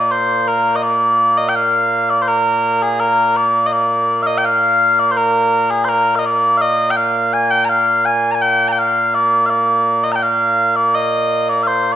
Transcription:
Already playing: A#2 A#3 D5
0.11 C5
0.48 A#4
0.76 D#5
0.83 D5
1.37 D#5
1.49 G5
1.55 F5
2.10 D5
2.22 C5
2.28 A#4
2.82 G#4
3.00 A#4
3.37 D5
3.66 D#5
3.72 D5
4.22 F5
4.27 D#5
4.38 G5
4.45 F5
4.99 D5
5.11 C5
5.17 A#4
5.70 G#4
5.85 C5
5.89 A#4
6.15 D#5 F5
6.25 D5
6.57 F5
6.61 D#5
6.90 G5
6.96 F5
7.33 G#5
7.51 G5
7.65 A#5
7.69 F5
8.05 G#5
8.31 G#5 A#5
8.42 G5
8.68 G5 A#5
8.79 F5
9.14 D5
9.46 F5
9.50 D5
10.03 D#5
10.12 G5 A#5
10.22 F5
10.76 D5
10.94 D#5
11.49 D5
11.63 F5
11.67 C5
11.92 D5

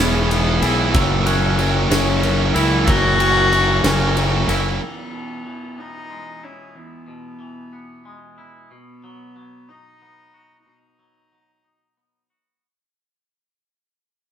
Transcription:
Already playing: E2 E3 G#3 B3 C#4 E4 G#4
0.00 E1 E3 B3 E4
0.30 G#3 B3 E4 G#4, ride
0.62 B1 B3 E4 G#4 E6, ride
0.94 F#1 F#3 A#3 C#4 E4 F#4 A#4 E6, kick, ride
1.25 A#3 C#4 E4 F#4 A#4 F#6, ride
1.58 F#3 A#3 C#4 E4 F#4 A#4, ride
1.90 F#1 F#3 A#3 C#4 E4 F#4 A#4, snare, ride
2.23 F#3 C#4 E4 A#4, ride
2.54 C#2 A#3 C#4 E4 F#4 A#4 E6, ride
2.86 F#1 F#3 A#3 C#4 E4 F#4 A#4 E6, kick, ride
3.19 A#3 C#4 E4 F#4 A#4 F#6, ride
3.51 F#3 A#3 C#4 E4 F#4 A#4, ride
3.84 F#1 F#3 A#3 C#4 E4 F#4 A#4, snare, ride
4.16 F#3 C#4 E4 A#4, ride
4.48 F#1 A#3 C#4 E4 F#4 A#4 E6, ride
4.81 E2 B3
5.13 B2
5.46 E3
5.78 B3 D#4
6.11 G#3
6.43 C#4 E4
6.75 E2 B3
7.08 B2
7.40 E3
7.73 B3
8.05 G#3
8.38 E4
8.71 B2 B3
9.04 F#3
9.36 F#3
9.69 D#4
10.02 B3
10.34 F#4
10.66 B2 D#4
10.99 F#3
11.32 F#3
11.64 D#4
11.97 B3
12.30 F#4

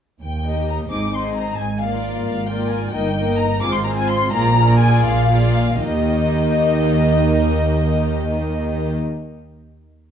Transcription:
0.20 D#2 G5
0.44 A#3 D#4 G4 D#5
0.69 A#5
0.90 G#1 G#2 C4 D#4 G#4 D#5 D6
1.13 C4 D#4 G#4 D#5 C6
1.37 A#5
1.58 G#1 G#2 G#5
1.81 A#3 F4 A#4 D5 F5
2.25 G#1 G#2 F5
2.46 A#3 F4 A#4 D5 G5
2.68 G#5
2.92 G1 G2 A#3 D#4 A#4 D#5 G5
3.15 A#3 D#4 A#4 D#5
3.37 A#5
3.62 G#1 G#2 C4 F4 G#4 C5 D6
3.73 C6
3.84 C4 F4 G#4 C5 A#5
3.97 G#5
4.08 C6
4.33 A#1 A#2 A#3 F4 G#4 D5 A#5
4.56 A#3 F4 G#4 D5
4.80 G#5
5.06 A#1 A#2 F5
5.31 A#3 F4 G#4 D5
5.82 D#2 D#3 A#3 D#4 G4 D#5

